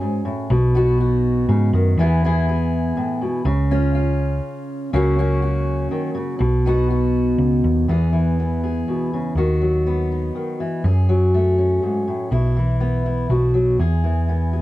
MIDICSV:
0, 0, Header, 1, 3, 480
1, 0, Start_track
1, 0, Key_signature, 4, "major"
1, 0, Tempo, 492207
1, 492, Time_signature, 3, 2, 24, 8
1, 14254, End_track
2, 0, Start_track
2, 0, Title_t, "Steel-string acoustic guitar"
2, 0, Program_c, 0, 25
2, 0, Note_on_c, 0, 61, 67
2, 0, Note_on_c, 0, 68, 65
2, 10, Note_on_c, 0, 44, 65
2, 239, Note_off_c, 0, 44, 0
2, 243, Note_on_c, 0, 45, 72
2, 455, Note_off_c, 0, 61, 0
2, 460, Note_off_c, 0, 68, 0
2, 487, Note_off_c, 0, 45, 0
2, 488, Note_on_c, 0, 47, 90
2, 729, Note_on_c, 0, 59, 66
2, 736, Note_on_c, 0, 63, 69
2, 746, Note_on_c, 0, 66, 79
2, 966, Note_off_c, 0, 66, 0
2, 978, Note_on_c, 0, 66, 65
2, 1446, Note_off_c, 0, 47, 0
2, 1450, Note_on_c, 0, 49, 67
2, 1689, Note_off_c, 0, 49, 0
2, 1697, Note_on_c, 0, 51, 64
2, 1899, Note_off_c, 0, 59, 0
2, 1902, Note_off_c, 0, 63, 0
2, 1903, Note_off_c, 0, 66, 0
2, 1932, Note_off_c, 0, 51, 0
2, 1937, Note_on_c, 0, 40, 85
2, 1941, Note_on_c, 0, 52, 71
2, 1948, Note_on_c, 0, 59, 71
2, 1954, Note_on_c, 0, 64, 68
2, 1961, Note_on_c, 0, 68, 73
2, 2178, Note_off_c, 0, 59, 0
2, 2181, Note_off_c, 0, 64, 0
2, 2189, Note_on_c, 0, 59, 70
2, 2195, Note_on_c, 0, 64, 62
2, 2202, Note_off_c, 0, 68, 0
2, 2206, Note_on_c, 0, 68, 77
2, 2423, Note_off_c, 0, 68, 0
2, 2427, Note_on_c, 0, 68, 62
2, 2890, Note_off_c, 0, 40, 0
2, 2894, Note_on_c, 0, 45, 67
2, 3130, Note_off_c, 0, 45, 0
2, 3134, Note_on_c, 0, 47, 67
2, 3346, Note_off_c, 0, 68, 0
2, 3347, Note_off_c, 0, 59, 0
2, 3350, Note_off_c, 0, 64, 0
2, 3363, Note_off_c, 0, 47, 0
2, 3367, Note_on_c, 0, 49, 86
2, 3371, Note_off_c, 0, 52, 0
2, 3620, Note_on_c, 0, 61, 67
2, 3624, Note_on_c, 0, 65, 74
2, 3838, Note_off_c, 0, 65, 0
2, 3850, Note_on_c, 0, 65, 64
2, 4773, Note_off_c, 0, 49, 0
2, 4775, Note_off_c, 0, 65, 0
2, 4780, Note_off_c, 0, 61, 0
2, 4809, Note_on_c, 0, 49, 83
2, 4812, Note_on_c, 0, 54, 69
2, 4816, Note_on_c, 0, 58, 71
2, 4821, Note_on_c, 0, 61, 74
2, 4836, Note_on_c, 0, 66, 73
2, 5044, Note_off_c, 0, 58, 0
2, 5048, Note_off_c, 0, 61, 0
2, 5056, Note_on_c, 0, 58, 64
2, 5060, Note_on_c, 0, 61, 66
2, 5065, Note_off_c, 0, 66, 0
2, 5069, Note_on_c, 0, 66, 72
2, 5284, Note_off_c, 0, 66, 0
2, 5288, Note_on_c, 0, 66, 63
2, 5760, Note_off_c, 0, 49, 0
2, 5764, Note_on_c, 0, 51, 65
2, 5990, Note_off_c, 0, 51, 0
2, 5994, Note_on_c, 0, 49, 71
2, 6213, Note_off_c, 0, 66, 0
2, 6214, Note_off_c, 0, 54, 0
2, 6217, Note_off_c, 0, 58, 0
2, 6219, Note_off_c, 0, 61, 0
2, 6226, Note_off_c, 0, 49, 0
2, 6230, Note_on_c, 0, 47, 86
2, 6494, Note_on_c, 0, 59, 65
2, 6503, Note_on_c, 0, 63, 68
2, 6507, Note_on_c, 0, 66, 75
2, 6720, Note_off_c, 0, 66, 0
2, 6732, Note_on_c, 0, 66, 65
2, 7656, Note_off_c, 0, 59, 0
2, 7656, Note_off_c, 0, 66, 0
2, 7661, Note_off_c, 0, 63, 0
2, 7673, Note_off_c, 0, 47, 0
2, 7687, Note_on_c, 0, 40, 74
2, 7694, Note_on_c, 0, 52, 61
2, 7698, Note_on_c, 0, 59, 55
2, 7708, Note_on_c, 0, 68, 67
2, 7912, Note_off_c, 0, 52, 0
2, 7924, Note_on_c, 0, 52, 58
2, 8185, Note_off_c, 0, 59, 0
2, 8189, Note_on_c, 0, 59, 52
2, 8410, Note_off_c, 0, 68, 0
2, 8421, Note_on_c, 0, 68, 59
2, 8660, Note_on_c, 0, 47, 59
2, 8889, Note_off_c, 0, 47, 0
2, 8907, Note_on_c, 0, 49, 61
2, 9102, Note_off_c, 0, 68, 0
2, 9105, Note_off_c, 0, 59, 0
2, 9122, Note_off_c, 0, 52, 0
2, 9123, Note_off_c, 0, 40, 0
2, 9133, Note_off_c, 0, 49, 0
2, 9138, Note_on_c, 0, 51, 75
2, 9146, Note_on_c, 0, 66, 66
2, 9376, Note_on_c, 0, 54, 56
2, 9622, Note_on_c, 0, 59, 57
2, 9867, Note_on_c, 0, 63, 54
2, 10082, Note_off_c, 0, 51, 0
2, 10093, Note_on_c, 0, 51, 60
2, 10327, Note_off_c, 0, 51, 0
2, 10334, Note_off_c, 0, 54, 0
2, 10338, Note_on_c, 0, 52, 58
2, 10544, Note_off_c, 0, 59, 0
2, 10546, Note_off_c, 0, 63, 0
2, 10570, Note_off_c, 0, 52, 0
2, 10572, Note_on_c, 0, 42, 73
2, 10580, Note_off_c, 0, 66, 0
2, 10584, Note_on_c, 0, 68, 68
2, 10814, Note_on_c, 0, 54, 65
2, 11063, Note_on_c, 0, 57, 55
2, 11296, Note_on_c, 0, 61, 59
2, 11529, Note_off_c, 0, 42, 0
2, 11535, Note_on_c, 0, 44, 61
2, 11770, Note_off_c, 0, 44, 0
2, 11775, Note_on_c, 0, 45, 63
2, 11982, Note_off_c, 0, 54, 0
2, 11982, Note_off_c, 0, 61, 0
2, 11987, Note_off_c, 0, 68, 0
2, 12003, Note_on_c, 0, 47, 71
2, 12010, Note_off_c, 0, 45, 0
2, 12014, Note_on_c, 0, 64, 69
2, 12015, Note_off_c, 0, 57, 0
2, 12245, Note_off_c, 0, 47, 0
2, 12253, Note_on_c, 0, 52, 64
2, 12486, Note_on_c, 0, 59, 55
2, 12722, Note_off_c, 0, 64, 0
2, 12734, Note_on_c, 0, 64, 63
2, 12938, Note_off_c, 0, 59, 0
2, 12969, Note_on_c, 0, 47, 65
2, 12971, Note_off_c, 0, 52, 0
2, 12971, Note_off_c, 0, 64, 0
2, 12977, Note_on_c, 0, 66, 58
2, 13204, Note_on_c, 0, 54, 61
2, 13417, Note_off_c, 0, 54, 0
2, 13424, Note_off_c, 0, 66, 0
2, 13449, Note_off_c, 0, 47, 0
2, 13451, Note_on_c, 0, 40, 72
2, 13463, Note_on_c, 0, 68, 64
2, 13690, Note_on_c, 0, 52, 60
2, 13934, Note_on_c, 0, 59, 53
2, 14160, Note_off_c, 0, 68, 0
2, 14172, Note_on_c, 0, 68, 59
2, 14254, Note_off_c, 0, 40, 0
2, 14254, Note_off_c, 0, 52, 0
2, 14254, Note_off_c, 0, 59, 0
2, 14254, Note_off_c, 0, 68, 0
2, 14254, End_track
3, 0, Start_track
3, 0, Title_t, "Picked electric bass"
3, 0, Program_c, 1, 34
3, 489, Note_on_c, 1, 35, 111
3, 1409, Note_off_c, 1, 35, 0
3, 1450, Note_on_c, 1, 44, 83
3, 1665, Note_off_c, 1, 44, 0
3, 1690, Note_on_c, 1, 42, 94
3, 1905, Note_off_c, 1, 42, 0
3, 1925, Note_on_c, 1, 40, 102
3, 2846, Note_off_c, 1, 40, 0
3, 3365, Note_on_c, 1, 37, 106
3, 4283, Note_off_c, 1, 37, 0
3, 4813, Note_on_c, 1, 37, 101
3, 5726, Note_off_c, 1, 37, 0
3, 6245, Note_on_c, 1, 35, 108
3, 7162, Note_off_c, 1, 35, 0
3, 7200, Note_on_c, 1, 37, 82
3, 7414, Note_off_c, 1, 37, 0
3, 7451, Note_on_c, 1, 39, 81
3, 7661, Note_off_c, 1, 39, 0
3, 7695, Note_on_c, 1, 40, 85
3, 8608, Note_off_c, 1, 40, 0
3, 9121, Note_on_c, 1, 39, 84
3, 10043, Note_off_c, 1, 39, 0
3, 10574, Note_on_c, 1, 42, 95
3, 11491, Note_off_c, 1, 42, 0
3, 12011, Note_on_c, 1, 35, 84
3, 12931, Note_off_c, 1, 35, 0
3, 12967, Note_on_c, 1, 35, 88
3, 13424, Note_off_c, 1, 35, 0
3, 13452, Note_on_c, 1, 40, 86
3, 14254, Note_off_c, 1, 40, 0
3, 14254, End_track
0, 0, End_of_file